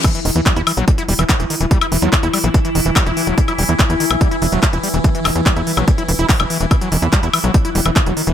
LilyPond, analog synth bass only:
\new Staff \with { instrumentName = "Analog synth bass" } { \clef bass \time 4/4 \key e \minor \tempo 4 = 144 r8 e,,16 e,16 r16 e,16 r16 b,,16 r8 e,,16 e,,16 r16 e,,16 r16 e,,16 | r8 e,,16 e,16 r16 e,16 r16 b,,16 r8 e,,16 e,,16 r16 e,,16 r16 e,,16 | r8 e,,16 e,16 r16 e,16 r16 b,,16 r8 e,,16 e,,16 r16 e,,16 r16 e,,16 | r8 e,,16 e,16 r16 e,16 r16 b,,16 r8 e,,16 e,,16 r16 e,,16 r16 e,,16 |
r8 e,,16 e,16 r16 e,16 r16 b,,16 r8 e,,16 e,,16 r16 e,,16 r16 e,,16 | }